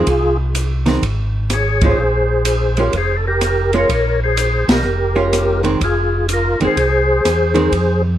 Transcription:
Already playing: tonewheel organ F4 G#4
0.07 tonewheel organ C2, kick, ride
0.55 hi-hat pedal, ride
0.86 hollow-body jazz guitar D#3 G#3 C4, snare, ride
1.02 tonewheel organ G#1, kick, ride
1.50 tonewheel organ G#4 C#5, cross-stick, hi-hat pedal, ride
1.81 hollow-body jazz guitar G#3 C#4 F4, tonewheel organ G#4 C5, kick, ride
1.98 tonewheel organ A#1
2.45 hi-hat pedal, ride
2.77 hollow-body jazz guitar G#3 C#4 F4, tonewheel organ G4 A#4, ride
2.93 tonewheel organ F1, kick, ride
2.98 tonewheel organ G#4 C5
3.17 tonewheel organ A4
3.27 tonewheel organ G4 A#4
3.41 cross-stick, hi-hat pedal, ride
3.73 hollow-body jazz guitar G#3 C#4 F4, ride
3.78 tonewheel organ A#4 C#5
3.89 tonewheel organ A#1, kick, ride
4.24 tonewheel organ G#4 C5
4.37 hi-hat pedal, ride
4.68 tonewheel organ B1 G4, snare, ride
4.72 tonewheel organ A#4
4.83 tonewheel organ F1
5.16 hollow-body jazz guitar G#3 C#4 F4
5.33 cross-stick, hi-hat pedal, ride
5.63 hollow-body jazz guitar D#3 G#3 C4, ride
5.80 tonewheel organ F1 F4, kick, ride
5.84 tonewheel organ G#4
6.29 tonewheel organ F4, hi-hat pedal, ride
6.34 tonewheel organ A#4
6.60 tonewheel organ F1, hollow-body jazz guitar D#3 G#3 C4, ride
6.65 tonewheel organ G#4 C5
6.77 tonewheel organ C2, kick, ride
7.25 tonewheel organ E2, cross-stick, hi-hat pedal, ride
7.54 hollow-body jazz guitar D#3 G#3 C4, ride
7.72 tonewheel organ F2, kick, ride

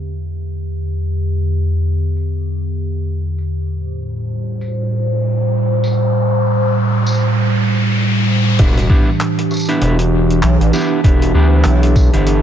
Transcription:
Already playing: ambient pad E2 D3 G4
0.94 tambourine
2.16 tambourine
3.38 tambourine
3.69 ambient pad A2 G3 C5, riser
4.61 tambourine
5.84 tambourine
7.06 tambourine
8.59 analog synth bass E1, ambient pad E3 D4 G4, clean electric guitar B3 D4 E4 G4, kick, closed hi-hat, crash
8.77 closed hi-hat
8.89 clean electric guitar B3 D4 E4 G4, kick
9.20 clap, closed hi-hat
9.38 closed hi-hat
9.51 cross-stick, tambourine
9.54 tambourine
9.57 tambourine
9.60 tambourine
9.65 clean electric guitar B3 D4 E4 G4, closed hi-hat, tambourine
9.81 analog synth bass E1, closed hi-hat
9.99 closed hi-hat
10.30 closed hi-hat
10.43 analog synth bass B1, clap, closed hi-hat
10.60 analog synth bass A1, closed hi-hat
10.73 clean electric guitar B3 D4 E4 G4, tambourine
11.04 analog synth bass E1, clean electric guitar B3 D4 E4 G4, kick, closed hi-hat
11.22 closed hi-hat
11.34 analog synth bass D2, clean electric guitar B3 D4 E4 G4
11.64 analog synth bass B1, clap, closed hi-hat
11.83 closed hi-hat
11.96 kick, tambourine
12.13 analog synth bass G1, clean electric guitar B3 D4 E4 G4, closed hi-hat
12.26 closed hi-hat

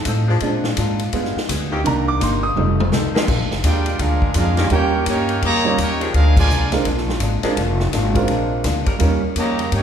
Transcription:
0.05 upright bass A2, hollow-body jazz guitar F3 C4 D#4 A4, kick, hi-hat pedal, ride
0.28 saxophone section F3 A#3 D4 G#4
0.40 upright bass A#2, hollow-body jazz guitar A#2 G#3 D4, grand piano G#3 C4 D4, kick, ride
0.45 hollow-body jazz guitar F4
0.64 snare
0.77 upright bass G#2, hollow-body jazz guitar A#2 G#3 D4 F4, kick, hi-hat pedal, ride
0.99 ride
1.13 upright bass G2, hollow-body jazz guitar G3 B3 F4 G#4, grand piano G#3 B3 F4, kick, ride
1.25 snare
1.36 muted upright bass stroke, snare
1.49 upright bass D2, hollow-body jazz guitar G3 B3 F4 G#4, kick, hi-hat pedal, ride
1.72 saxophone section D#3 A#3 C4 G4
1.84 upright bass C2, hollow-body jazz guitar C3 A#3 D#4 G4, grand piano D#3 A#3 D4 A#5, kick, ride
2.08 grand piano D6
2.20 upright bass G1, hollow-body jazz guitar C3 A#3 D#4 G4, grand piano C6, kick, hi-hat pedal, ride
2.43 grand piano D#6
2.56 upright bass F1, hollow-body jazz guitar F3 C4 D#4 A4, grand piano G3 A3 D#4, mid tom
2.80 mid tom
2.92 upright bass C2, hollow-body jazz guitar F3 C4 D#4 A4, snare, hi-hat pedal
3.14 saxophone section D3 G#3 A#3 F4, muted upright bass stroke, snare
3.27 upright bass A#1, hollow-body jazz guitar A#2 G#3 D4 F4, kick, crash
3.40 upright bass G#1
3.51 upright bass F1, snare
3.63 upright bass D#2, hollow-body jazz guitar A#2 G#3 D4 F4, trombone section G#3 D4 G4, trumpet section F4 A#4 D5 G5, kick, hi-hat pedal, ride
3.86 ride
3.99 upright bass D2, hollow-body jazz guitar A#2 G#3 D4 F4, trombone section G#3 D4 F4, trumpet section D4 G#4 A#4 F5, kick, ride
4.22 kick
4.34 upright bass F2, hollow-body jazz guitar A#2 G#3 D4 F4, trombone section G#3 D4 F4, trumpet section D4 G#4 A#4 F5, kick, hi-hat pedal, ride
4.57 saxophone section D#3 A#3 C#4 G4, snare, ride
4.70 upright bass D#2, hollow-body jazz guitar D#3 A#3 C#4 G4, grand piano G3 C#4 D#4 F4 A#4, trombone section A#3 C#4 G4, trumpet section D#4 A#4 C#5 G5, kick, ride
5.06 upright bass G2, hollow-body jazz guitar D#3 A#3 C#4 G4, trombone section A#3 C#4 G4, trumpet section D#4 A#4 C#5 G5, kick, hi-hat pedal, ride
5.29 ride
5.42 upright bass F2, trombone section C#3 G3 A#3, hollow-body jazz guitar D#3 A#3 C#4 G4, trumpet section G4 C#5 D#5 A#5, kick, ride
5.65 grand piano G3 C#4 D#4 F4 C#5
5.78 upright bass D#2, hollow-body jazz guitar D#3 A#3 C#4 G4, trombone section A#3 C#4 G4, trumpet section D#4 A#4 C#5 G5, kick, hi-hat pedal, ride
6.01 saxophone section F3 A#3 D4 G#4, ride
6.13 upright bass D2, hollow-body jazz guitar A#2 G#3 D4 F4, trombone section G#3 D4 F4, trumpet section D4 G#4 A#4 D#5 F5, kick, ride
6.37 trombone section D3 F3 G#3, trumpet section F4 A#4 D5 G#5, kick, crash
6.49 upright bass C2, hollow-body jazz guitar A#2 G#3 D4 F4, hi-hat pedal
6.72 grand piano G#3 C4 D4 F4 A#4, snare, ride
6.85 upright bass A#1, hollow-body jazz guitar A#2 G#3 D4 F4, kick, ride
6.98 snare
7.09 snare
7.20 upright bass G#1, hollow-body jazz guitar A#2 G#3 D4 F4, kick, hi-hat pedal, ride
7.43 saxophone section F3 A#3 D4 G#4, grand piano G#3 C4 D4 F4 A#4, muted upright bass stroke, snare, ride
7.57 upright bass F1, hollow-body jazz guitar A#2 G#3 D4 F4, kick, ride
7.80 snare
7.92 upright bass G#1, hollow-body jazz guitar A#2 G#3 D4 F4, kick, snare, hi-hat pedal, ride
8.14 grand piano G#3 C4 D4 F4 A#4, kick, ride
8.28 upright bass A#1, hollow-body jazz guitar A#2 G#3 D4 F4, kick, ride
8.64 upright bass D2, hollow-body jazz guitar A#2 G#3 D4 F4, kick, snare, hi-hat pedal, ride
8.86 saxophone section G3 C#4 D#4 A#4, muted upright bass stroke, kick, ride
8.99 upright bass D#2, hollow-body jazz guitar D#3 A#3, grand piano G3 C#4 D#4 F4 A#4, kick, ride
9.03 hollow-body jazz guitar C#4 G4
9.23 muted upright bass stroke
9.36 upright bass F2, trombone section C#3 G3 A#3, hollow-body jazz guitar D#3 A#3 C#4 G4, trumpet section G4 C#5 D#5 A#5, kick, hi-hat pedal, ride
9.59 ride
9.72 upright bass G2, hollow-body jazz guitar D#3 A#3 C#4 G4, trombone section A#3 C#4 G4, trumpet section D#4 A#4 C#5 G5, kick, ride

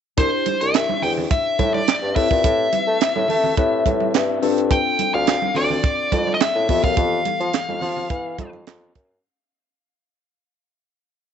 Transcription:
0.17 bassoon C2, tine electric piano D4 E4 G4 C5, lead electric guitar C5, kick, closed hi-hat, muted conga
0.46 closed hi-hat, muted conga, high conga
0.61 bassoon C2, lead electric guitar E5, closed hi-hat
0.74 snare, clap, closed hi-hat, muted conga
0.89 high conga
1.02 bassoon E2, lead electric guitar G5, open hi-hat, low conga
1.17 low conga
1.31 lead electric guitar E5, kick, closed hi-hat, muted conga
1.59 bassoon A2, kick, closed hi-hat, muted conga, high conga
1.74 lead electric guitar D5, high conga
1.88 snare, clap, closed hi-hat, muted conga
2.03 bassoon G2
2.15 bassoon A2, tine electric piano C4 E4 G4 B4, lead electric guitar E5, kick, open hi-hat
2.31 bassoon A#2, kick
2.44 bassoon A2, kick, closed hi-hat, muted conga
2.73 closed hi-hat, high conga
2.87 bassoon A3
3.01 snare, clap, closed hi-hat
3.16 bassoon A2, high conga
3.28 bassoon A3, open hi-hat, muted conga, low conga
3.44 low conga
3.57 bassoon A2, tine electric piano C4 E4 G4 B4, kick, closed hi-hat, muted conga
3.86 bassoon A2, kick, closed hi-hat, high conga
4.00 high conga
4.14 bassoon G2, tine electric piano E5, snare, clap, closed hi-hat, muted conga
4.42 bassoon G2, tine electric piano C4 D4 F4 A4 A5, open hi-hat, muted conga
4.58 closed hi-hat
4.71 lead electric guitar G5, kick, closed hi-hat, muted conga
4.99 closed hi-hat, high conga
5.14 bassoon D2, lead electric guitar F5
5.27 snare, clap, closed hi-hat
5.42 high conga
5.55 bassoon D2, lead electric guitar D5, open hi-hat, muted conga, low conga
5.70 low conga
5.84 kick, closed hi-hat
6.12 bassoon F2, kick, closed hi-hat, muted conga, high conga
6.27 high conga
6.34 lead electric guitar D#5
6.41 lead electric guitar E5, snare, clap, closed hi-hat
6.55 bassoon A2
6.68 bassoon F2, tine electric piano E3 B3 G4 A4, kick, open hi-hat
6.84 bassoon F#2, lead electric guitar F5, kick
6.97 bassoon F2, kick, closed hi-hat
7.25 closed hi-hat, muted conga, high conga
7.40 bassoon F3, closed hi-hat
7.53 snare, clap, closed hi-hat, muted conga
7.69 bassoon F2, high conga
7.81 bassoon F3, open hi-hat, muted conga, low conga
7.96 low conga
8.10 bassoon E3, kick, closed hi-hat, muted conga
8.38 bassoon F2, kick, closed hi-hat, muted conga, high conga
8.53 high conga
8.67 bassoon F2, snare, clap, closed hi-hat, muted conga
8.95 bassoon F#2, kick, closed hi-hat

